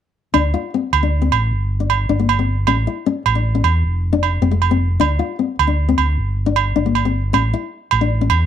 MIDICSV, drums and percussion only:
0, 0, Header, 1, 2, 480
1, 0, Start_track
1, 0, Key_signature, -1, "minor"
1, 0, Tempo, 388350
1, 425, Time_signature, 12, 3, 24, 8
1, 10459, End_track
2, 0, Start_track
2, 0, Title_t, "Drums"
2, 419, Note_on_c, 9, 68, 54
2, 543, Note_off_c, 9, 68, 0
2, 1149, Note_on_c, 9, 68, 56
2, 1272, Note_off_c, 9, 68, 0
2, 1632, Note_on_c, 9, 68, 53
2, 1756, Note_off_c, 9, 68, 0
2, 2346, Note_on_c, 9, 68, 54
2, 2470, Note_off_c, 9, 68, 0
2, 2830, Note_on_c, 9, 68, 58
2, 2954, Note_off_c, 9, 68, 0
2, 3300, Note_on_c, 9, 68, 59
2, 3423, Note_off_c, 9, 68, 0
2, 4027, Note_on_c, 9, 68, 61
2, 4150, Note_off_c, 9, 68, 0
2, 4500, Note_on_c, 9, 68, 55
2, 4624, Note_off_c, 9, 68, 0
2, 5227, Note_on_c, 9, 68, 51
2, 5350, Note_off_c, 9, 68, 0
2, 5707, Note_on_c, 9, 68, 51
2, 5830, Note_off_c, 9, 68, 0
2, 6190, Note_on_c, 9, 68, 61
2, 6314, Note_off_c, 9, 68, 0
2, 6913, Note_on_c, 9, 68, 67
2, 7037, Note_off_c, 9, 68, 0
2, 7389, Note_on_c, 9, 68, 54
2, 7513, Note_off_c, 9, 68, 0
2, 8109, Note_on_c, 9, 68, 55
2, 8233, Note_off_c, 9, 68, 0
2, 8593, Note_on_c, 9, 68, 53
2, 8716, Note_off_c, 9, 68, 0
2, 9072, Note_on_c, 9, 68, 57
2, 9196, Note_off_c, 9, 68, 0
2, 9778, Note_on_c, 9, 68, 65
2, 9901, Note_off_c, 9, 68, 0
2, 10257, Note_on_c, 9, 68, 60
2, 10381, Note_off_c, 9, 68, 0
2, 10459, End_track
0, 0, End_of_file